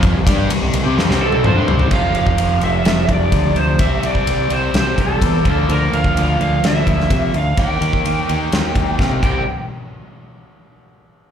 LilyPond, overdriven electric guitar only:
\new Staff \with { instrumentName = "Overdriven electric guitar" } { \clef bass \time 4/4 \key f \major \tempo 4 = 127 <f c' f'>16 <c g>16 <g d' g'>8 <c g>16 <c g>16 <c g>16 <c' g'>16 <f c'>16 <c g c'>8. <f c'>16 <g d'>16 <c g c'>8 | <f, c f>4. <f, c f>4. <f, c f>4 | <c g c'>4. <c g c'>4. <c g c'>8 <bes, f bes>8~ | <bes, f bes>4 <bes, f bes>4. <bes, f bes>4 r8 |
<ees bes ees'>4. <ees bes ees'>4. <ees bes ees'>8 <c g c'>8 | r1 | }